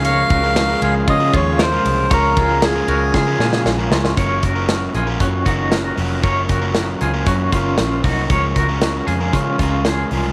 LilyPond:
<<
  \new Staff \with { instrumentName = "Melodica" } { \time 4/4 \key ges \lydian \tempo 4 = 116 f''4. f''8 ees''8 des''8 c''4 | bes'4 aes'2 r4 | r1 | r1 |
r1 | }
  \new Staff \with { instrumentName = "Clean electric guitar" } { \time 4/4 \key ges \lydian <bes' des''>8 <ges' bes'>4 <f' aes'>8 <des' f'>8 <des' f'>8 <f' bes'>4 | <bes' des''>8 <f' aes'>4 <ges' bes'>8 <f' aes'>8 <f' aes'>4 <des' f'>8 | <bes' des''>8 <ges' bes'>4 <f' aes'>8 <des' ges'>8 <ees' ges'>8 <ges' bes'>4 | <bes' des''>8 <ges' bes'>4 <f' aes'>8 <des' ges'>8 <des' f'>4 <ees' ges'>8 |
<bes' des''>8 <ges' bes'>4 <f' aes'>8 <des' f'>8 <des' f'>8 <f' aes'>4 | }
  \new Staff \with { instrumentName = "Overdriven electric guitar" } { \time 4/4 \key ges \lydian <des f aes des' f' bes'>8. <aes des' f' bes'>8 <aes des' f' bes'>4 <des f aes des' f' bes'>4 <aes des' f' bes'>8. | <aes des' f' bes'>8. <aes des' f' bes'>8 <aes des' f' bes'>4 <des f aes des' f' bes'>4 <aes des' f' bes'>8. | <ges bes des' f' bes'>8. <ges bes des' f' bes'>4 <ges bes des' f' bes'>8. <bes des' f' bes'>4 <ges bes des' f' bes'>8 | <ges bes des' f' bes'>8. <ges bes des' f' bes'>4 <ges bes des' f' bes'>8. <bes des' f' bes'>4 <ges bes des' f' bes'>8 |
<des f aes des' f' bes'>8. <des aes des' f' bes'>4 <des f aes des' f' bes'>8. <aes des' f' bes'>4 <des f aes des' f' bes'>8 | }
  \new Staff \with { instrumentName = "Analog synth pad" } { \time 4/4 \key ges \lydian <des aes bes aes' f''>1~ | <des aes bes aes' f''>1 | r1 | r1 |
r1 | }
  \new Staff \with { instrumentName = "Picked electric bass" } { \clef bass \time 4/4 \key ges \lydian des,8 des,4 des,8 des8 ees,4 c,8 | des,8 des,4 des,8 des8 bes,8 bes,,8 des,8 | ges,,8 ges,,4 bes,,8 ges,8 ges,,4 f,,8 | ges,,8 ges,,4 des,8 ges,8 ges,,8 bes,,8 c,8 |
des,8 des,4 f,8 des8 des,4 c,8 | }
  \new DrumStaff \with { instrumentName = "Drums" } \drummode { \time 4/4 <hhp cymr>8 <bd cymr>8 <cymr sn>8 cymr8 <bd cymr>8 <bd cymr>8 <cymr sn>8 <hho cymr>8 | <hhp bd cymr>8 <bd cymr>8 <cymr sn>8 cymr8 <bd sn>8 sn16 sn16 sn8 sn16 sn16 | <hh bd>8 <hh bd>8 <hh sn>8 hh8 <hh bd>8 <hh bd>8 <hh sn>8 hho8 | <hh bd>8 <hh bd>8 <hh sn>8 hh8 <hh bd>8 <hh bd>8 <hh sn>8 <hho bd>8 |
<hh bd>8 <hh bd>8 <hh sn>8 hh8 <hh bd>8 <hh bd>8 <hh sn>8 hho8 | }
>>